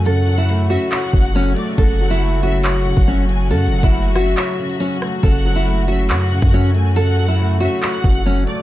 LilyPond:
<<
  \new Staff \with { instrumentName = "Violin section" } { \time 4/4 \key fis \minor \tempo 4 = 139 fis''4. e''8 fis''4. d''8 | fis''4. e''8 fis''4. gis''8 | fis''4. e''4. r4 | fis''4. e''8 fis''4. gis''8 |
fis''4. e''8 fis''4. d''8 | }
  \new Staff \with { instrumentName = "Nylon-string guitar" } { \time 4/4 \key fis \minor a'8. e'8. fis'4. cis'8 r8 | a'8. e'8. fis'4. cis'8 r8 | a'8. e'8. fis'4. cis'8 r8 | a'8. e'8. fis'4. cis'8 r8 |
a'8. e'8. fis'4. cis'8 r8 | }
  \new Staff \with { instrumentName = "Grand piano" } { \time 4/4 \key fis \minor <cis fis a cis''>8 fis8 a8 cis'8 cis''8 cis8 fis8 a8 | cis8 fis8 a8 cis'8 cis''8 cis8 fis8 a8 | cis8 fis8 a8 cis'8 cis''8 cis8 fis8 a8 | cis8 fis8 a8 cis'8 cis''8 cis8 fis8 a8 |
cis8 fis8 a8 cis'8 cis''8 cis8 fis8 a8 | }
  \new Staff \with { instrumentName = "String section" } { \time 4/4 \key fis \minor << { <cis fis fis'>1~ | <cis fis fis'>1~ | <cis fis fis'>1~ | <cis fis fis'>1~ |
<cis fis fis'>1 | } \\ { a1~ | a1~ | a1 | a1~ |
a1 | } >> }
  \new Staff \with { instrumentName = "808-style bass" } { \clef bass \time 4/4 \key fis \minor fis,4.~ fis,16 r8. fis,,4 r8 | fis,,2~ fis,,8. fis,,4~ fis,,16 | fis,16. fis,,16. fis,,4~ fis,,16 r2 | fis,,2 fis,8. fis,4~ fis,16~ |
fis,4.~ fis,16 r8. fis,,4 r8 | }
  \new DrumStaff \with { instrumentName = "Drums" } \drummode { \time 4/4 hh8. hh16 r8 hh8 <hc hh>8 bd16 hh16 hh16 hh16 hh8 | <hh bd>8. hh16 r8 hh8 <hc hh>8. <hh bd>16 r8 hh8 | hh8. <hh bd>16 r8 <hh ss>8 <hc hh>8. hh16 hh16 hh32 hh32 <hh ss>32 hh16. | <hh bd>8. hh16 r8 hh8 <hc hh>8. <hh bd>16 r8 hh8 |
hh8. hh16 r8 hh8 <hc hh>8 bd16 hh16 hh16 hh16 hh8 | }
>>